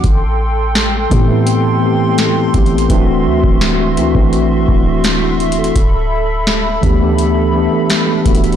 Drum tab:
HH |x-----------------------------------x-----------x-----------------------x-----------x---x---x---|x-----------------------------------x-----------x-----------------------x-----------x---x---x---|x-----------------------------------x-----------x-----------------------x-----------x--x--x--x--|
SD |------------------------o-----------------------------------------------o-----------------------|------------------------o-----------------------------------------------o-----------------------|------------------------o-----------------------------------------------o-----------------------|
BD |o-----------------------------------o-----------------------------------------------o-----------|o-----------------o-----------------------o-----------------o-----------------------------------|o-----------------------------------o-----------------------------------------------o-----------|